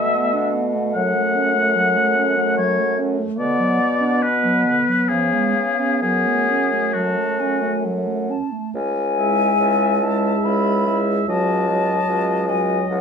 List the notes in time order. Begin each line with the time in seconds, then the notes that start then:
Already playing: B2 A3 E5 F#5
0.14 B3
0.34 D4
0.55 B3
0.74 A3
0.94 F#2 F#3 F#5
1.15 A3
1.35 C#4
1.56 A3
1.75 F#3
1.96 A3
2.17 C#4
2.37 A3
2.57 F#3 C#5
2.79 A3
2.99 C#4
3.19 A3
3.38 B2 D3 B3 D5 F#5
3.59 F#3
3.80 B3
4.01 D4
4.22 B3 B4
4.44 F#3
4.66 D3
4.88 F#3
5.08 C#3 F3 G#4 F5
5.33 G#3
5.56 B3
5.79 C#4
6.01 F#2 F#3 G#4 F#5
6.26 A3
6.49 C#4
6.72 A3
6.93 F#3 A3 F#4 A5
7.17 A3
7.40 C#4 G#5
7.62 A3
7.85 F#3 F#5
8.07 A3
8.30 C#4 A5
8.52 A3
8.74 C#2 G#5
9.17 G#3 E4 E5
9.60 C#2
10.01 G#3 E4 E5 A5
10.44 C#2 B5
10.86 G#3 E4 E5
11.28 C#2 F#3 F#4 D#5 A5
11.68 F#3 F#4 D#5
12.08 C#2
12.48 F#3 F#4 D#5 G#5
12.90 C#2 F#5